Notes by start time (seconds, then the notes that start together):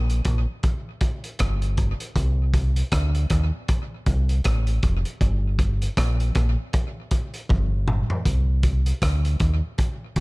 Already playing: A#1
0.10 closed hi-hat
0.25 A#1, kick, closed hi-hat
0.63 kick, closed hi-hat
1.01 kick, closed hi-hat
1.24 closed hi-hat
1.39 G1, kick, cross-stick, closed hi-hat
1.62 closed hi-hat
1.77 kick, closed hi-hat
2.00 closed hi-hat
2.16 C2, kick, closed hi-hat
2.54 kick, closed hi-hat
2.76 closed hi-hat
2.92 D2, kick, cross-stick, closed hi-hat
3.15 closed hi-hat
3.30 D#2, kick, cross-stick, closed hi-hat
3.68 kick, closed hi-hat
4.06 C2, kick, closed hi-hat
4.29 closed hi-hat
4.44 A1, kick, cross-stick, closed hi-hat
4.67 closed hi-hat
4.83 F1, kick, closed hi-hat
5.05 closed hi-hat
5.21 G1, kick, closed hi-hat
5.59 kick, closed hi-hat
5.82 closed hi-hat
5.97 A#1, kick, cross-stick, closed hi-hat
6.20 closed hi-hat
6.35 A#1, kick, cross-stick, closed hi-hat
6.73 kick, closed hi-hat
7.11 kick, closed hi-hat
7.34 closed hi-hat
7.49 G1, kick, high tom
7.88 mid tom
8.10 floor tom
8.25 C2, kick, closed hi-hat
8.63 kick, closed hi-hat
8.86 closed hi-hat
9.02 D2, kick, cross-stick, closed hi-hat
9.25 closed hi-hat
9.40 D#2, kick, closed hi-hat
9.78 kick, closed hi-hat
10.16 C2, kick, closed hi-hat